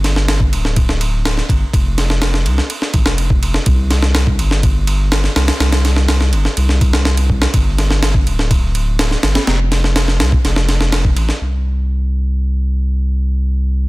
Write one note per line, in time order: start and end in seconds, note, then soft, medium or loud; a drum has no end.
0.00 0.54 G1 loud
0.04 snare soft
0.04 ride medium
0.16 snare medium
0.28 snare loud
0.28 ride medium
0.40 kick medium
0.52 1.41 D1 medium
0.52 ride medium
0.65 snare soft
0.76 kick loud
0.76 ride medium
0.89 snare soft
1.01 ride medium
1.25 snare loud
1.25 ride medium
1.37 snare soft
1.49 1.64 G1 medium
1.49 kick medium
1.49 ride medium
1.73 2.47 F1 loud
1.73 kick loud
1.73 ride medium
1.98 snare soft
1.98 ride medium
2.10 snare soft
2.22 snare loud
2.22 ride medium
2.34 snare soft
2.46 2.60 C2 medium
2.46 ride medium
2.58 snare soft
2.70 ride medium
2.82 snare soft
2.94 3.01 A1 loud
2.94 kick medium
2.94 ride medium
3.06 3.59 F1 medium
3.06 snare loud
3.18 ride medium
3.30 kick loud
3.43 ride medium
3.54 snare soft
3.66 4.40 C2 loud
3.66 kick loud
3.66 ride medium
3.91 snare soft
3.91 ride medium
4.02 snare medium
4.15 snare loud
4.15 ride medium
4.27 kick medium
4.39 5.28 G1 medium
4.39 ride medium
4.51 snare soft
4.63 kick loud
4.63 ride medium
4.87 ride medium
5.12 snare loud
5.12 ride medium
5.24 snare soft
5.36 5.51 C2 medium
5.36 snare loud
5.36 ride medium
5.48 snare loud
5.48 ride medium
5.60 6.34 C2 medium
5.60 snare loud
5.60 ride medium
5.72 snare loud
5.72 ride medium
5.85 snare soft
5.85 ride medium
5.96 snare soft
6.08 snare loud
6.08 ride medium
6.21 snare soft
6.32 6.47 G1 medium
6.32 ride medium
6.45 snare soft
6.57 7.46 C2 medium
6.57 ride medium
6.69 snare soft
6.81 kick medium
6.81 ride medium
6.93 snare loud
7.05 snare loud
7.17 ride medium
7.30 kick medium
7.42 snare loud
7.54 8.27 G1 loud
7.54 kick loud
7.54 ride medium
7.78 snare soft
7.78 ride medium
7.90 snare medium
8.03 snare loud
8.03 ride medium
8.15 kick medium
8.26 9.15 D1 medium
8.26 ride medium
8.39 snare soft
8.51 kick loud
8.51 ride medium
8.75 ride medium
8.99 snare loud
8.99 ride medium
9.11 snare soft
9.23 9.38 G1 medium
9.23 snare loud
9.23 ride medium
9.35 snare loud
9.35 ride medium
9.47 10.21 F1 loud
9.47 snare loud
9.47 ride medium
9.72 snare soft
9.72 ride medium
9.84 snare soft
9.96 snare loud
9.96 ride medium
10.08 snare soft
10.20 10.35 C2 medium
10.20 snare loud
10.20 ride medium
10.32 kick medium
10.44 11.16 F1 loud
10.44 snare soft
10.44 ride medium
10.56 snare soft
10.69 snare soft
10.69 ride medium
10.81 snare soft
10.92 snare loud
10.92 ride medium
11.05 kick medium
11.17 11.32 A1 medium
11.17 ride medium
11.29 snare soft
11.41 13.89 C2 medium